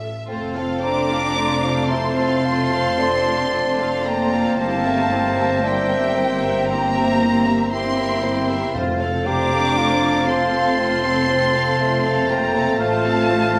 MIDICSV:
0, 0, Header, 1, 12, 480
1, 0, Start_track
1, 0, Key_signature, -1, "major"
1, 0, Tempo, 1079137
1, 131, Time_signature, 4, 2, 24, 8
1, 1569, Tempo, 1052632
1, 3009, Tempo, 1025641
1, 4929, Tempo, 1005025
1, 6269, End_track
2, 0, Start_track
2, 0, Title_t, "Violin section"
2, 0, Program_c, 0, 48
2, 365, Note_on_c, 0, 86, 90
2, 831, Note_off_c, 0, 86, 0
2, 848, Note_on_c, 0, 84, 84
2, 1807, Note_on_c, 0, 82, 74
2, 1809, Note_off_c, 0, 84, 0
2, 2048, Note_off_c, 0, 82, 0
2, 2050, Note_on_c, 0, 81, 86
2, 2521, Note_off_c, 0, 81, 0
2, 2531, Note_on_c, 0, 79, 86
2, 3008, Note_on_c, 0, 82, 93
2, 3011, Note_off_c, 0, 79, 0
2, 3491, Note_off_c, 0, 82, 0
2, 3498, Note_on_c, 0, 84, 87
2, 3966, Note_off_c, 0, 84, 0
2, 4212, Note_on_c, 0, 86, 92
2, 4671, Note_off_c, 0, 86, 0
2, 4693, Note_on_c, 0, 84, 86
2, 5651, Note_off_c, 0, 84, 0
2, 5652, Note_on_c, 0, 82, 83
2, 5888, Note_off_c, 0, 82, 0
2, 5889, Note_on_c, 0, 81, 99
2, 6269, Note_off_c, 0, 81, 0
2, 6269, End_track
3, 0, Start_track
3, 0, Title_t, "Oboe"
3, 0, Program_c, 1, 68
3, 131, Note_on_c, 1, 81, 59
3, 2031, Note_off_c, 1, 81, 0
3, 2048, Note_on_c, 1, 82, 57
3, 3827, Note_off_c, 1, 82, 0
3, 3973, Note_on_c, 1, 81, 64
3, 5868, Note_off_c, 1, 81, 0
3, 5887, Note_on_c, 1, 77, 66
3, 6269, Note_off_c, 1, 77, 0
3, 6269, End_track
4, 0, Start_track
4, 0, Title_t, "Flute"
4, 0, Program_c, 2, 73
4, 369, Note_on_c, 2, 82, 79
4, 855, Note_on_c, 2, 81, 72
4, 861, Note_off_c, 2, 82, 0
4, 1809, Note_off_c, 2, 81, 0
4, 1812, Note_on_c, 2, 79, 66
4, 2054, Note_on_c, 2, 77, 70
4, 2060, Note_off_c, 2, 79, 0
4, 2536, Note_on_c, 2, 76, 67
4, 2542, Note_off_c, 2, 77, 0
4, 3016, Note_on_c, 2, 79, 70
4, 3023, Note_off_c, 2, 76, 0
4, 3371, Note_off_c, 2, 79, 0
4, 3497, Note_on_c, 2, 79, 73
4, 3956, Note_off_c, 2, 79, 0
4, 4217, Note_on_c, 2, 82, 78
4, 4692, Note_on_c, 2, 81, 75
4, 4699, Note_off_c, 2, 82, 0
4, 5649, Note_on_c, 2, 79, 71
4, 5656, Note_off_c, 2, 81, 0
4, 5883, Note_off_c, 2, 79, 0
4, 5885, Note_on_c, 2, 77, 76
4, 6269, Note_off_c, 2, 77, 0
4, 6269, End_track
5, 0, Start_track
5, 0, Title_t, "Clarinet"
5, 0, Program_c, 3, 71
5, 136, Note_on_c, 3, 72, 67
5, 2034, Note_off_c, 3, 72, 0
5, 2056, Note_on_c, 3, 72, 71
5, 3831, Note_off_c, 3, 72, 0
5, 3980, Note_on_c, 3, 72, 66
5, 5872, Note_off_c, 3, 72, 0
5, 5891, Note_on_c, 3, 72, 73
5, 6269, Note_off_c, 3, 72, 0
5, 6269, End_track
6, 0, Start_track
6, 0, Title_t, "Violin section"
6, 0, Program_c, 4, 48
6, 0, Note_on_c, 4, 76, 47
6, 131, Note_off_c, 4, 76, 0
6, 131, Note_on_c, 4, 65, 52
6, 131, Note_on_c, 4, 72, 54
6, 241, Note_off_c, 4, 72, 0
6, 242, Note_off_c, 4, 65, 0
6, 250, Note_on_c, 4, 69, 47
6, 252, Note_on_c, 4, 77, 48
6, 369, Note_off_c, 4, 69, 0
6, 369, Note_on_c, 4, 72, 53
6, 370, Note_off_c, 4, 77, 0
6, 371, Note_on_c, 4, 65, 53
6, 489, Note_off_c, 4, 65, 0
6, 489, Note_off_c, 4, 72, 0
6, 494, Note_on_c, 4, 77, 50
6, 495, Note_on_c, 4, 69, 50
6, 611, Note_off_c, 4, 77, 0
6, 612, Note_off_c, 4, 69, 0
6, 613, Note_on_c, 4, 72, 52
6, 614, Note_on_c, 4, 65, 51
6, 723, Note_off_c, 4, 72, 0
6, 724, Note_off_c, 4, 65, 0
6, 735, Note_on_c, 4, 69, 48
6, 739, Note_on_c, 4, 77, 49
6, 853, Note_off_c, 4, 69, 0
6, 855, Note_off_c, 4, 77, 0
6, 858, Note_on_c, 4, 72, 49
6, 860, Note_on_c, 4, 65, 52
6, 975, Note_off_c, 4, 72, 0
6, 976, Note_off_c, 4, 65, 0
6, 985, Note_on_c, 4, 69, 46
6, 986, Note_on_c, 4, 77, 48
6, 1098, Note_off_c, 4, 69, 0
6, 1099, Note_off_c, 4, 77, 0
6, 1100, Note_on_c, 4, 72, 54
6, 1102, Note_on_c, 4, 65, 55
6, 1208, Note_off_c, 4, 72, 0
6, 1209, Note_off_c, 4, 65, 0
6, 1220, Note_on_c, 4, 69, 49
6, 1222, Note_on_c, 4, 77, 48
6, 1335, Note_off_c, 4, 69, 0
6, 1336, Note_off_c, 4, 77, 0
6, 1339, Note_on_c, 4, 72, 50
6, 1340, Note_on_c, 4, 65, 52
6, 1455, Note_off_c, 4, 65, 0
6, 1455, Note_off_c, 4, 72, 0
6, 1458, Note_on_c, 4, 77, 47
6, 1459, Note_on_c, 4, 69, 49
6, 1573, Note_off_c, 4, 77, 0
6, 1574, Note_off_c, 4, 69, 0
6, 1574, Note_on_c, 4, 72, 49
6, 1577, Note_on_c, 4, 65, 50
6, 1684, Note_off_c, 4, 72, 0
6, 1686, Note_off_c, 4, 65, 0
6, 1690, Note_on_c, 4, 69, 50
6, 1691, Note_on_c, 4, 77, 48
6, 1810, Note_off_c, 4, 69, 0
6, 1811, Note_off_c, 4, 77, 0
6, 1816, Note_on_c, 4, 65, 51
6, 1817, Note_on_c, 4, 72, 51
6, 1933, Note_off_c, 4, 65, 0
6, 1933, Note_off_c, 4, 72, 0
6, 1935, Note_on_c, 4, 77, 52
6, 1936, Note_on_c, 4, 69, 51
6, 2052, Note_off_c, 4, 69, 0
6, 2052, Note_off_c, 4, 77, 0
6, 2054, Note_on_c, 4, 67, 50
6, 2055, Note_on_c, 4, 72, 53
6, 2163, Note_off_c, 4, 67, 0
6, 2163, Note_off_c, 4, 72, 0
6, 2175, Note_on_c, 4, 70, 49
6, 2175, Note_on_c, 4, 76, 47
6, 2292, Note_off_c, 4, 70, 0
6, 2292, Note_off_c, 4, 76, 0
6, 2294, Note_on_c, 4, 67, 50
6, 2295, Note_on_c, 4, 72, 51
6, 2411, Note_on_c, 4, 70, 49
6, 2412, Note_off_c, 4, 67, 0
6, 2413, Note_off_c, 4, 72, 0
6, 2413, Note_on_c, 4, 76, 50
6, 2531, Note_off_c, 4, 70, 0
6, 2532, Note_off_c, 4, 76, 0
6, 2534, Note_on_c, 4, 72, 54
6, 2536, Note_on_c, 4, 67, 51
6, 2645, Note_off_c, 4, 72, 0
6, 2646, Note_off_c, 4, 67, 0
6, 2650, Note_on_c, 4, 70, 50
6, 2653, Note_on_c, 4, 76, 48
6, 2771, Note_off_c, 4, 70, 0
6, 2772, Note_off_c, 4, 76, 0
6, 2775, Note_on_c, 4, 72, 52
6, 2777, Note_on_c, 4, 67, 51
6, 2893, Note_off_c, 4, 72, 0
6, 2893, Note_on_c, 4, 76, 47
6, 2894, Note_off_c, 4, 67, 0
6, 2894, Note_on_c, 4, 70, 49
6, 3009, Note_on_c, 4, 67, 53
6, 3009, Note_on_c, 4, 72, 53
6, 3012, Note_off_c, 4, 70, 0
6, 3012, Note_off_c, 4, 76, 0
6, 3123, Note_off_c, 4, 67, 0
6, 3123, Note_off_c, 4, 72, 0
6, 3130, Note_on_c, 4, 76, 52
6, 3132, Note_on_c, 4, 70, 48
6, 3252, Note_off_c, 4, 76, 0
6, 3253, Note_off_c, 4, 70, 0
6, 3253, Note_on_c, 4, 67, 54
6, 3253, Note_on_c, 4, 72, 51
6, 3370, Note_on_c, 4, 76, 50
6, 3371, Note_on_c, 4, 70, 49
6, 3373, Note_off_c, 4, 67, 0
6, 3373, Note_off_c, 4, 72, 0
6, 3490, Note_on_c, 4, 72, 48
6, 3491, Note_off_c, 4, 70, 0
6, 3491, Note_off_c, 4, 76, 0
6, 3491, Note_on_c, 4, 67, 50
6, 3603, Note_off_c, 4, 67, 0
6, 3603, Note_off_c, 4, 72, 0
6, 3610, Note_on_c, 4, 70, 53
6, 3613, Note_on_c, 4, 76, 53
6, 3731, Note_off_c, 4, 70, 0
6, 3732, Note_off_c, 4, 76, 0
6, 3733, Note_on_c, 4, 72, 49
6, 3734, Note_on_c, 4, 67, 49
6, 3852, Note_off_c, 4, 72, 0
6, 3853, Note_off_c, 4, 67, 0
6, 3853, Note_on_c, 4, 70, 51
6, 3855, Note_on_c, 4, 76, 53
6, 3968, Note_on_c, 4, 72, 54
6, 3970, Note_off_c, 4, 72, 0
6, 3970, Note_on_c, 4, 72, 53
6, 3973, Note_off_c, 4, 70, 0
6, 3974, Note_off_c, 4, 76, 0
6, 4083, Note_off_c, 4, 72, 0
6, 4091, Note_on_c, 4, 77, 50
6, 4092, Note_on_c, 4, 69, 47
6, 4212, Note_off_c, 4, 77, 0
6, 4213, Note_off_c, 4, 69, 0
6, 4214, Note_on_c, 4, 72, 51
6, 4216, Note_off_c, 4, 72, 0
6, 4216, Note_on_c, 4, 72, 54
6, 4335, Note_off_c, 4, 72, 0
6, 4339, Note_on_c, 4, 77, 52
6, 4340, Note_on_c, 4, 69, 52
6, 4453, Note_on_c, 4, 72, 54
6, 4455, Note_off_c, 4, 72, 0
6, 4455, Note_off_c, 4, 77, 0
6, 4455, Note_on_c, 4, 72, 55
6, 4456, Note_off_c, 4, 69, 0
6, 4565, Note_off_c, 4, 72, 0
6, 4573, Note_on_c, 4, 77, 51
6, 4574, Note_on_c, 4, 69, 54
6, 4689, Note_on_c, 4, 72, 52
6, 4690, Note_off_c, 4, 72, 0
6, 4690, Note_on_c, 4, 72, 55
6, 4691, Note_off_c, 4, 77, 0
6, 4692, Note_off_c, 4, 69, 0
6, 4810, Note_off_c, 4, 72, 0
6, 4810, Note_on_c, 4, 69, 51
6, 4810, Note_on_c, 4, 77, 50
6, 4929, Note_off_c, 4, 69, 0
6, 4929, Note_off_c, 4, 77, 0
6, 4931, Note_on_c, 4, 72, 57
6, 4933, Note_off_c, 4, 72, 0
6, 4933, Note_on_c, 4, 72, 56
6, 5044, Note_off_c, 4, 72, 0
6, 5051, Note_on_c, 4, 77, 53
6, 5052, Note_on_c, 4, 69, 52
6, 5172, Note_off_c, 4, 77, 0
6, 5173, Note_off_c, 4, 69, 0
6, 5176, Note_on_c, 4, 72, 53
6, 5178, Note_off_c, 4, 72, 0
6, 5178, Note_on_c, 4, 72, 58
6, 5294, Note_on_c, 4, 77, 51
6, 5295, Note_on_c, 4, 69, 51
6, 5296, Note_off_c, 4, 72, 0
6, 5413, Note_off_c, 4, 77, 0
6, 5414, Note_off_c, 4, 69, 0
6, 5421, Note_on_c, 4, 72, 53
6, 5424, Note_off_c, 4, 72, 0
6, 5424, Note_on_c, 4, 72, 52
6, 5530, Note_off_c, 4, 72, 0
6, 5535, Note_on_c, 4, 69, 56
6, 5536, Note_on_c, 4, 77, 53
6, 5652, Note_off_c, 4, 69, 0
6, 5652, Note_off_c, 4, 77, 0
6, 5656, Note_on_c, 4, 72, 54
6, 5771, Note_off_c, 4, 72, 0
6, 5772, Note_on_c, 4, 77, 55
6, 5774, Note_on_c, 4, 69, 55
6, 5889, Note_off_c, 4, 77, 0
6, 5890, Note_off_c, 4, 69, 0
6, 5890, Note_on_c, 4, 72, 55
6, 5892, Note_off_c, 4, 72, 0
6, 5892, Note_on_c, 4, 72, 61
6, 6001, Note_off_c, 4, 72, 0
6, 6009, Note_on_c, 4, 69, 54
6, 6011, Note_on_c, 4, 77, 53
6, 6126, Note_on_c, 4, 72, 57
6, 6129, Note_off_c, 4, 69, 0
6, 6129, Note_off_c, 4, 72, 0
6, 6129, Note_off_c, 4, 77, 0
6, 6129, Note_on_c, 4, 72, 59
6, 6250, Note_off_c, 4, 72, 0
6, 6251, Note_on_c, 4, 69, 56
6, 6251, Note_on_c, 4, 77, 56
6, 6269, Note_off_c, 4, 69, 0
6, 6269, Note_off_c, 4, 77, 0
6, 6269, End_track
7, 0, Start_track
7, 0, Title_t, "Bassoon"
7, 0, Program_c, 5, 70
7, 128, Note_on_c, 5, 60, 65
7, 606, Note_on_c, 5, 62, 68
7, 612, Note_off_c, 5, 60, 0
7, 847, Note_off_c, 5, 62, 0
7, 850, Note_on_c, 5, 64, 64
7, 1090, Note_on_c, 5, 65, 66
7, 1097, Note_off_c, 5, 64, 0
7, 1330, Note_on_c, 5, 62, 70
7, 1337, Note_off_c, 5, 65, 0
7, 2050, Note_on_c, 5, 60, 55
7, 2057, Note_off_c, 5, 62, 0
7, 2525, Note_off_c, 5, 60, 0
7, 2528, Note_on_c, 5, 62, 68
7, 2769, Note_on_c, 5, 60, 66
7, 2776, Note_off_c, 5, 62, 0
7, 3366, Note_off_c, 5, 60, 0
7, 3493, Note_on_c, 5, 64, 65
7, 3972, Note_on_c, 5, 65, 67
7, 3979, Note_off_c, 5, 64, 0
7, 4216, Note_on_c, 5, 67, 72
7, 4223, Note_off_c, 5, 65, 0
7, 4457, Note_on_c, 5, 65, 81
7, 4464, Note_off_c, 5, 67, 0
7, 4932, Note_on_c, 5, 60, 71
7, 4939, Note_off_c, 5, 65, 0
7, 5412, Note_off_c, 5, 60, 0
7, 5415, Note_on_c, 5, 57, 73
7, 6269, Note_off_c, 5, 57, 0
7, 6269, End_track
8, 0, Start_track
8, 0, Title_t, "Viola section"
8, 0, Program_c, 6, 48
8, 128, Note_on_c, 6, 57, 56
8, 129, Note_on_c, 6, 69, 54
8, 240, Note_off_c, 6, 57, 0
8, 240, Note_off_c, 6, 69, 0
8, 246, Note_on_c, 6, 60, 53
8, 247, Note_on_c, 6, 65, 52
8, 367, Note_off_c, 6, 60, 0
8, 367, Note_on_c, 6, 57, 47
8, 368, Note_off_c, 6, 65, 0
8, 369, Note_on_c, 6, 69, 51
8, 487, Note_off_c, 6, 57, 0
8, 487, Note_on_c, 6, 65, 46
8, 488, Note_off_c, 6, 69, 0
8, 488, Note_on_c, 6, 60, 49
8, 602, Note_on_c, 6, 57, 54
8, 603, Note_on_c, 6, 69, 54
8, 608, Note_off_c, 6, 60, 0
8, 608, Note_off_c, 6, 65, 0
8, 718, Note_off_c, 6, 57, 0
8, 718, Note_off_c, 6, 69, 0
8, 728, Note_on_c, 6, 60, 50
8, 728, Note_on_c, 6, 65, 49
8, 847, Note_on_c, 6, 57, 51
8, 847, Note_on_c, 6, 69, 51
8, 850, Note_off_c, 6, 60, 0
8, 850, Note_off_c, 6, 65, 0
8, 966, Note_on_c, 6, 60, 49
8, 968, Note_on_c, 6, 65, 48
8, 969, Note_off_c, 6, 57, 0
8, 970, Note_off_c, 6, 69, 0
8, 1089, Note_off_c, 6, 60, 0
8, 1090, Note_off_c, 6, 65, 0
8, 1090, Note_on_c, 6, 57, 56
8, 1090, Note_on_c, 6, 69, 55
8, 1202, Note_off_c, 6, 57, 0
8, 1202, Note_off_c, 6, 69, 0
8, 1207, Note_on_c, 6, 60, 49
8, 1208, Note_on_c, 6, 65, 48
8, 1328, Note_on_c, 6, 57, 50
8, 1328, Note_on_c, 6, 69, 49
8, 1329, Note_off_c, 6, 60, 0
8, 1330, Note_off_c, 6, 65, 0
8, 1448, Note_on_c, 6, 60, 49
8, 1448, Note_on_c, 6, 65, 46
8, 1449, Note_off_c, 6, 57, 0
8, 1449, Note_off_c, 6, 69, 0
8, 1568, Note_off_c, 6, 60, 0
8, 1568, Note_off_c, 6, 65, 0
8, 1568, Note_on_c, 6, 69, 50
8, 1569, Note_on_c, 6, 57, 53
8, 1681, Note_off_c, 6, 69, 0
8, 1682, Note_off_c, 6, 57, 0
8, 1691, Note_on_c, 6, 60, 52
8, 1692, Note_on_c, 6, 65, 47
8, 1810, Note_on_c, 6, 69, 48
8, 1811, Note_off_c, 6, 60, 0
8, 1811, Note_off_c, 6, 65, 0
8, 1812, Note_on_c, 6, 57, 48
8, 1930, Note_off_c, 6, 69, 0
8, 1930, Note_on_c, 6, 65, 50
8, 1931, Note_off_c, 6, 57, 0
8, 1931, Note_on_c, 6, 60, 49
8, 2049, Note_off_c, 6, 65, 0
8, 2049, Note_on_c, 6, 58, 53
8, 2049, Note_on_c, 6, 64, 53
8, 2050, Note_off_c, 6, 60, 0
8, 2160, Note_off_c, 6, 58, 0
8, 2161, Note_off_c, 6, 64, 0
8, 2171, Note_on_c, 6, 60, 50
8, 2171, Note_on_c, 6, 67, 51
8, 2287, Note_on_c, 6, 64, 51
8, 2288, Note_on_c, 6, 58, 49
8, 2290, Note_off_c, 6, 60, 0
8, 2290, Note_off_c, 6, 67, 0
8, 2409, Note_off_c, 6, 58, 0
8, 2409, Note_off_c, 6, 64, 0
8, 2409, Note_on_c, 6, 60, 47
8, 2411, Note_on_c, 6, 67, 46
8, 2530, Note_off_c, 6, 60, 0
8, 2531, Note_off_c, 6, 67, 0
8, 2532, Note_on_c, 6, 58, 53
8, 2534, Note_on_c, 6, 64, 53
8, 2643, Note_off_c, 6, 58, 0
8, 2644, Note_off_c, 6, 64, 0
8, 2652, Note_on_c, 6, 60, 48
8, 2653, Note_on_c, 6, 67, 51
8, 2771, Note_on_c, 6, 58, 51
8, 2772, Note_off_c, 6, 60, 0
8, 2772, Note_off_c, 6, 67, 0
8, 2772, Note_on_c, 6, 64, 51
8, 2891, Note_off_c, 6, 58, 0
8, 2891, Note_off_c, 6, 64, 0
8, 2891, Note_on_c, 6, 67, 47
8, 2893, Note_on_c, 6, 60, 47
8, 3010, Note_off_c, 6, 67, 0
8, 3010, Note_on_c, 6, 58, 56
8, 3011, Note_on_c, 6, 64, 55
8, 3012, Note_off_c, 6, 60, 0
8, 3123, Note_off_c, 6, 58, 0
8, 3124, Note_off_c, 6, 64, 0
8, 3134, Note_on_c, 6, 60, 52
8, 3134, Note_on_c, 6, 67, 49
8, 3252, Note_on_c, 6, 64, 49
8, 3254, Note_off_c, 6, 60, 0
8, 3254, Note_off_c, 6, 67, 0
8, 3254, Note_on_c, 6, 58, 48
8, 3372, Note_off_c, 6, 64, 0
8, 3373, Note_on_c, 6, 67, 48
8, 3374, Note_off_c, 6, 58, 0
8, 3374, Note_on_c, 6, 60, 47
8, 3493, Note_off_c, 6, 60, 0
8, 3493, Note_off_c, 6, 67, 0
8, 3496, Note_on_c, 6, 58, 55
8, 3497, Note_on_c, 6, 64, 52
8, 3606, Note_off_c, 6, 58, 0
8, 3606, Note_off_c, 6, 64, 0
8, 3614, Note_on_c, 6, 60, 53
8, 3615, Note_on_c, 6, 67, 52
8, 3733, Note_off_c, 6, 60, 0
8, 3733, Note_on_c, 6, 64, 48
8, 3734, Note_off_c, 6, 67, 0
8, 3734, Note_on_c, 6, 58, 49
8, 3851, Note_on_c, 6, 60, 51
8, 3851, Note_on_c, 6, 67, 50
8, 3853, Note_off_c, 6, 58, 0
8, 3853, Note_off_c, 6, 64, 0
8, 3972, Note_off_c, 6, 60, 0
8, 3972, Note_off_c, 6, 67, 0
8, 3973, Note_on_c, 6, 57, 55
8, 3974, Note_on_c, 6, 65, 56
8, 4085, Note_off_c, 6, 57, 0
8, 4085, Note_off_c, 6, 65, 0
8, 4096, Note_on_c, 6, 60, 53
8, 4098, Note_on_c, 6, 69, 53
8, 4213, Note_on_c, 6, 57, 55
8, 4213, Note_on_c, 6, 65, 51
8, 4215, Note_off_c, 6, 60, 0
8, 4216, Note_off_c, 6, 69, 0
8, 4331, Note_on_c, 6, 69, 50
8, 4332, Note_on_c, 6, 60, 48
8, 4333, Note_off_c, 6, 57, 0
8, 4333, Note_off_c, 6, 65, 0
8, 4451, Note_off_c, 6, 69, 0
8, 4452, Note_off_c, 6, 60, 0
8, 4452, Note_on_c, 6, 65, 55
8, 4453, Note_on_c, 6, 57, 54
8, 4563, Note_off_c, 6, 57, 0
8, 4563, Note_off_c, 6, 65, 0
8, 4572, Note_on_c, 6, 69, 52
8, 4573, Note_on_c, 6, 60, 51
8, 4691, Note_off_c, 6, 60, 0
8, 4691, Note_off_c, 6, 69, 0
8, 4691, Note_on_c, 6, 65, 55
8, 4692, Note_on_c, 6, 57, 54
8, 4809, Note_on_c, 6, 69, 51
8, 4810, Note_off_c, 6, 65, 0
8, 4810, Note_on_c, 6, 60, 49
8, 4811, Note_off_c, 6, 57, 0
8, 4927, Note_on_c, 6, 65, 60
8, 4928, Note_on_c, 6, 57, 56
8, 4929, Note_off_c, 6, 60, 0
8, 4929, Note_off_c, 6, 69, 0
8, 5041, Note_off_c, 6, 57, 0
8, 5041, Note_off_c, 6, 65, 0
8, 5050, Note_on_c, 6, 69, 53
8, 5051, Note_on_c, 6, 60, 54
8, 5171, Note_on_c, 6, 65, 53
8, 5172, Note_off_c, 6, 60, 0
8, 5172, Note_off_c, 6, 69, 0
8, 5173, Note_on_c, 6, 57, 56
8, 5292, Note_off_c, 6, 65, 0
8, 5292, Note_on_c, 6, 60, 50
8, 5293, Note_off_c, 6, 57, 0
8, 5293, Note_on_c, 6, 69, 48
8, 5412, Note_off_c, 6, 60, 0
8, 5413, Note_off_c, 6, 69, 0
8, 5416, Note_on_c, 6, 57, 54
8, 5416, Note_on_c, 6, 65, 53
8, 5525, Note_off_c, 6, 57, 0
8, 5525, Note_off_c, 6, 65, 0
8, 5532, Note_on_c, 6, 60, 52
8, 5533, Note_on_c, 6, 69, 53
8, 5650, Note_off_c, 6, 60, 0
8, 5650, Note_off_c, 6, 69, 0
8, 5652, Note_on_c, 6, 65, 52
8, 5653, Note_on_c, 6, 57, 51
8, 5769, Note_off_c, 6, 57, 0
8, 5769, Note_off_c, 6, 65, 0
8, 5771, Note_on_c, 6, 60, 53
8, 5771, Note_on_c, 6, 69, 54
8, 5885, Note_on_c, 6, 65, 60
8, 5886, Note_on_c, 6, 57, 63
8, 5888, Note_off_c, 6, 60, 0
8, 5888, Note_off_c, 6, 69, 0
8, 5997, Note_off_c, 6, 65, 0
8, 5998, Note_off_c, 6, 57, 0
8, 6007, Note_on_c, 6, 60, 58
8, 6007, Note_on_c, 6, 69, 58
8, 6125, Note_on_c, 6, 57, 58
8, 6126, Note_on_c, 6, 65, 57
8, 6128, Note_off_c, 6, 60, 0
8, 6128, Note_off_c, 6, 69, 0
8, 6248, Note_off_c, 6, 57, 0
8, 6249, Note_off_c, 6, 65, 0
8, 6250, Note_on_c, 6, 60, 52
8, 6250, Note_on_c, 6, 69, 50
8, 6269, Note_off_c, 6, 60, 0
8, 6269, Note_off_c, 6, 69, 0
8, 6269, End_track
9, 0, Start_track
9, 0, Title_t, "French horn section"
9, 0, Program_c, 7, 60
9, 133, Note_on_c, 7, 57, 59
9, 135, Note_on_c, 7, 60, 61
9, 2032, Note_off_c, 7, 57, 0
9, 2033, Note_off_c, 7, 60, 0
9, 2049, Note_on_c, 7, 58, 57
9, 2050, Note_on_c, 7, 60, 55
9, 2521, Note_off_c, 7, 58, 0
9, 2521, Note_off_c, 7, 60, 0
9, 2531, Note_on_c, 7, 58, 58
9, 2531, Note_on_c, 7, 60, 63
9, 3001, Note_off_c, 7, 58, 0
9, 3001, Note_off_c, 7, 60, 0
9, 3006, Note_on_c, 7, 60, 60
9, 3007, Note_on_c, 7, 58, 64
9, 3481, Note_off_c, 7, 58, 0
9, 3481, Note_off_c, 7, 60, 0
9, 3488, Note_on_c, 7, 60, 60
9, 3489, Note_on_c, 7, 58, 60
9, 3890, Note_off_c, 7, 58, 0
9, 3890, Note_off_c, 7, 60, 0
9, 3970, Note_on_c, 7, 60, 57
9, 3972, Note_on_c, 7, 57, 61
9, 5866, Note_off_c, 7, 60, 0
9, 5879, Note_off_c, 7, 57, 0
9, 5884, Note_on_c, 7, 57, 64
9, 5885, Note_on_c, 7, 65, 63
9, 6269, Note_off_c, 7, 57, 0
9, 6269, Note_off_c, 7, 65, 0
9, 6269, End_track
10, 0, Start_track
10, 0, Title_t, "Cello section"
10, 0, Program_c, 8, 48
10, 373, Note_on_c, 8, 62, 71
10, 835, Note_off_c, 8, 62, 0
10, 856, Note_on_c, 8, 60, 61
10, 1812, Note_on_c, 8, 58, 65
10, 1813, Note_off_c, 8, 60, 0
10, 2050, Note_off_c, 8, 58, 0
10, 2056, Note_on_c, 8, 57, 69
10, 2524, Note_off_c, 8, 57, 0
10, 2535, Note_on_c, 8, 55, 65
10, 3013, Note_off_c, 8, 55, 0
10, 3014, Note_on_c, 8, 58, 76
10, 3494, Note_off_c, 8, 58, 0
10, 3496, Note_on_c, 8, 60, 68
10, 3974, Note_off_c, 8, 60, 0
10, 4214, Note_on_c, 8, 62, 73
10, 4672, Note_off_c, 8, 62, 0
10, 4693, Note_on_c, 8, 60, 66
10, 5632, Note_off_c, 8, 60, 0
10, 5652, Note_on_c, 8, 58, 73
10, 5888, Note_off_c, 8, 58, 0
10, 5889, Note_on_c, 8, 57, 75
10, 6269, Note_off_c, 8, 57, 0
10, 6269, End_track
11, 0, Start_track
11, 0, Title_t, "Timpani"
11, 0, Program_c, 10, 47
11, 3975, Note_on_c, 10, 41, 80
11, 4673, Note_off_c, 10, 41, 0
11, 6269, End_track
12, 0, Start_track
12, 0, Title_t, "Double bass section"
12, 0, Program_c, 11, 48
12, 133, Note_on_c, 11, 29, 61
12, 2032, Note_off_c, 11, 29, 0
12, 2053, Note_on_c, 11, 31, 62
12, 3956, Note_off_c, 11, 31, 0
12, 3974, Note_on_c, 11, 29, 63
12, 5868, Note_off_c, 11, 29, 0
12, 5887, Note_on_c, 11, 33, 65
12, 6269, Note_off_c, 11, 33, 0
12, 6269, End_track
0, 0, End_of_file